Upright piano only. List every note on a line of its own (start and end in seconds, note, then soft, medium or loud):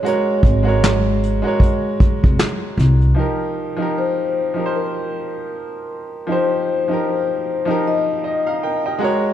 0.00 0.03 G#3 medium
0.00 0.61 G#3 medium
0.00 0.04 F#4 medium
0.00 0.06 A#4 medium
0.00 0.08 C#5 loud
0.04 0.62 F#4 medium
0.04 0.62 A#4 medium
0.04 0.63 C#5 loud
0.63 1.36 G#3 medium
0.63 1.37 F#4 medium
0.63 1.38 A#4 medium
0.68 1.39 C#5 medium
1.42 2.87 G#3 medium
1.42 2.87 F#4 medium
1.42 2.88 A#4 medium
1.47 2.89 C#5 medium
3.15 3.72 F3 medium
3.15 3.73 D#4 medium
3.15 3.74 G4 medium
3.20 3.75 A#4 medium
3.76 4.49 F3 medium
3.76 4.50 D#4 medium
3.76 4.51 G4 medium
3.82 4.52 A#4 medium
4.54 5.98 F3 medium
4.54 5.99 D#4 medium
4.54 6.00 G4 medium
4.59 4.61 A#4 medium
4.66 6.04 C5 medium
6.27 6.84 F3 medium
6.27 6.85 D#4 medium
6.27 6.86 G4 medium
6.32 6.87 C5 medium
6.88 7.60 F3 medium
6.88 7.61 D#4 medium
6.88 7.62 G4 medium
6.93 7.63 A#4 medium
7.65 9.00 F3 medium
7.65 9.01 D#4 medium
7.65 8.24 G4 medium
7.71 8.24 A#4 medium
8.24 8.45 D#5 medium
8.47 8.61 F5 medium
8.47 8.62 A#5 medium
8.63 8.84 A#4 medium
8.63 8.84 G5 medium
8.86 9.23 G4 soft
8.86 9.22 D#5 medium
8.86 9.00 G5 medium
8.99 9.33 G#3 medium
8.99 9.33 F#4 medium
8.99 9.33 A#4 medium
8.99 9.33 A#5 medium
9.04 9.33 C#5 loud